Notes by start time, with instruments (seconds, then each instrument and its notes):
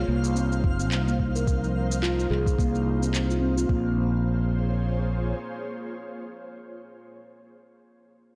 Already playing: ambient pad A#3 D#4 G#4 C5, synth texture F5
0.08 fretless electric bass C2, steel tongue drum A#3
0.24 shaker
0.36 steel tongue drum C4, shaker
0.52 shaker
0.64 fretless electric bass F#1, kick
0.80 steel tongue drum C4, shaker
0.92 fretless electric bass C2, clap, shaker
1.07 steel tongue drum A#3, shaker
1.20 kick
1.35 steel tongue drum A#4, shaker
1.47 fretless electric bass C2, kick, shaker
1.63 steel tongue drum F3, shaker
1.92 shaker
2.03 steel tongue drum F4, clap, shaker
2.20 shaker
2.30 fretless electric bass C2, steel tongue drum G#4, clap
2.46 kick, shaker
2.58 fretless electric bass C2, steel tongue drum A#3, kick, shaker
2.75 shaker
3.02 steel tongue drum C4, shaker
3.14 clap, shaker
3.30 steel tongue drum F4, shaker
3.41 steel tongue drum C4
3.57 steel tongue drum F4, shaker
3.69 fretless electric bass A#1, steel tongue drum A#3, ambient pad A#3, kick
3.79 ambient pad F4
3.88 ambient pad G#4
3.95 ambient pad C5
4.04 ambient pad C#5